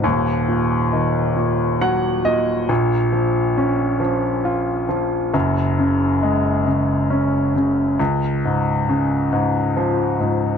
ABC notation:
X:1
M:6/8
L:1/8
Q:3/8=45
K:F#
V:1 name="Grand piano" clef=bass
[D,,,D,,] A,, D, A,, [F,f] [A,,d] | [A,,,A,,] E, C E, E E, | [F,,,F,,] C, G, C, C C, | C,, G,, C, G,, E, G,, |]